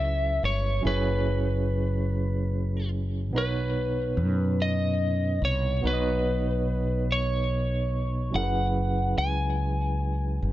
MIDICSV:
0, 0, Header, 1, 4, 480
1, 0, Start_track
1, 0, Key_signature, 5, "major"
1, 0, Tempo, 833333
1, 480, Time_signature, 6, 3, 24, 8
1, 6062, End_track
2, 0, Start_track
2, 0, Title_t, "Lead electric guitar"
2, 0, Program_c, 0, 29
2, 0, Note_on_c, 0, 76, 100
2, 258, Note_off_c, 0, 76, 0
2, 261, Note_on_c, 0, 73, 77
2, 474, Note_off_c, 0, 73, 0
2, 500, Note_on_c, 0, 71, 70
2, 1667, Note_off_c, 0, 71, 0
2, 1946, Note_on_c, 0, 71, 67
2, 2660, Note_on_c, 0, 75, 74
2, 2674, Note_off_c, 0, 71, 0
2, 3136, Note_off_c, 0, 75, 0
2, 3138, Note_on_c, 0, 73, 66
2, 3376, Note_off_c, 0, 73, 0
2, 3382, Note_on_c, 0, 71, 75
2, 4102, Note_on_c, 0, 73, 82
2, 4112, Note_off_c, 0, 71, 0
2, 4813, Note_on_c, 0, 78, 90
2, 4832, Note_off_c, 0, 73, 0
2, 5287, Note_off_c, 0, 78, 0
2, 5290, Note_on_c, 0, 80, 82
2, 6062, Note_off_c, 0, 80, 0
2, 6062, End_track
3, 0, Start_track
3, 0, Title_t, "Tine electric piano"
3, 0, Program_c, 1, 4
3, 0, Control_c, 1, 64, 127
3, 0, Note_on_c, 1, 54, 53
3, 0, Note_on_c, 1, 61, 50
3, 0, Note_on_c, 1, 64, 52
3, 0, Note_on_c, 1, 68, 52
3, 0, Note_on_c, 1, 71, 67
3, 451, Note_off_c, 1, 54, 0
3, 456, Note_off_c, 1, 61, 0
3, 461, Note_off_c, 1, 64, 0
3, 465, Note_off_c, 1, 68, 0
3, 468, Note_on_c, 1, 54, 59
3, 470, Note_off_c, 1, 71, 0
3, 477, Note_on_c, 1, 61, 60
3, 485, Note_on_c, 1, 64, 54
3, 495, Note_on_c, 1, 68, 55
3, 502, Note_on_c, 1, 73, 67
3, 1891, Note_off_c, 1, 54, 0
3, 1895, Note_off_c, 1, 61, 0
3, 1899, Note_off_c, 1, 64, 0
3, 1904, Note_off_c, 1, 68, 0
3, 1908, Note_off_c, 1, 73, 0
3, 1908, Note_on_c, 1, 47, 57
3, 1917, Note_on_c, 1, 59, 54
3, 1926, Control_c, 1, 64, 0
3, 1928, Note_on_c, 1, 63, 56
3, 1935, Note_on_c, 1, 71, 57
3, 1943, Note_on_c, 1, 73, 69
3, 2029, Control_c, 1, 64, 127
3, 3331, Note_off_c, 1, 47, 0
3, 3335, Note_off_c, 1, 59, 0
3, 3341, Note_off_c, 1, 63, 0
3, 3344, Note_off_c, 1, 71, 0
3, 3346, Note_on_c, 1, 47, 61
3, 3348, Note_off_c, 1, 73, 0
3, 3354, Note_on_c, 1, 59, 58
3, 3364, Note_on_c, 1, 63, 50
3, 3373, Note_on_c, 1, 71, 53
3, 3384, Note_on_c, 1, 73, 57
3, 3409, Note_off_c, 1, 73, 0
3, 3419, Note_on_c, 1, 75, 68
3, 4770, Note_off_c, 1, 47, 0
3, 4774, Note_off_c, 1, 59, 0
3, 4779, Note_off_c, 1, 63, 0
3, 4783, Note_off_c, 1, 71, 0
3, 4786, Note_on_c, 1, 54, 61
3, 4795, Note_on_c, 1, 61, 51
3, 4803, Note_on_c, 1, 64, 58
3, 4806, Note_off_c, 1, 75, 0
3, 4808, Control_c, 1, 64, 0
3, 4813, Note_on_c, 1, 68, 55
3, 4818, Note_on_c, 1, 70, 49
3, 4846, Note_off_c, 1, 70, 0
3, 4858, Note_on_c, 1, 71, 66
3, 4917, Control_c, 1, 64, 127
3, 6062, Note_off_c, 1, 54, 0
3, 6062, Note_off_c, 1, 61, 0
3, 6062, Note_off_c, 1, 64, 0
3, 6062, Note_off_c, 1, 68, 0
3, 6062, Note_off_c, 1, 71, 0
3, 6062, End_track
4, 0, Start_track
4, 0, Title_t, "Fretless electric bass"
4, 0, Program_c, 2, 35
4, 0, Note_on_c, 2, 37, 74
4, 220, Note_off_c, 2, 37, 0
4, 248, Note_on_c, 2, 31, 73
4, 461, Note_off_c, 2, 31, 0
4, 488, Note_on_c, 2, 30, 82
4, 1923, Note_off_c, 2, 30, 0
4, 1923, Note_on_c, 2, 35, 82
4, 2402, Note_on_c, 2, 42, 75
4, 2411, Note_off_c, 2, 35, 0
4, 3098, Note_off_c, 2, 42, 0
4, 3121, Note_on_c, 2, 36, 82
4, 3337, Note_off_c, 2, 36, 0
4, 3363, Note_on_c, 2, 35, 82
4, 4778, Note_off_c, 2, 35, 0
4, 4807, Note_on_c, 2, 30, 81
4, 5260, Note_off_c, 2, 30, 0
4, 5285, Note_on_c, 2, 37, 67
4, 5979, Note_off_c, 2, 37, 0
4, 6005, Note_on_c, 2, 31, 74
4, 6062, Note_off_c, 2, 31, 0
4, 6062, End_track
0, 0, End_of_file